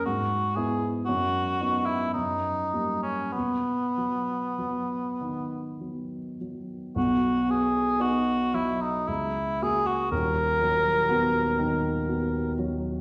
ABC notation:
X:1
M:3/4
L:1/16
Q:1/4=57
K:B
V:1 name="Cor anglais"
F2 G z F3 E D3 C | B,8 z4 | F2 G2 F2 E D E2 G F | A8- A2 z2 |]
V:2 name="Grand piano" clef=bass
G,,2 [B,E]2 F,,2 [B,D]2 F,,2 [=G,A,]2 | B,,2 F,2 [F,B,]2 D,2 [F,B,]2 F,2 | [B,,,B,,]2 B,2 [B,D]2 F,2 C,,2 [A,F]2 | [D,,,D,,]2 F,2 [B,F]2 D,2 [B,F]2 F,2 |]